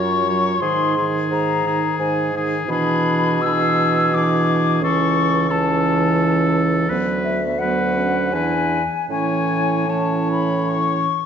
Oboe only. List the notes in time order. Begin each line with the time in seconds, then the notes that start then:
Already playing: C#5
0.29 C#5
0.62 G#4
0.97 G#4
1.67 G#4
2.37 G#4
2.71 G#4
3.46 G#4
4.16 G#4
4.84 A4
5.49 A4
6.89 B4
7.61 B4
8.35 B4
9.12 C#5
9.89 C#5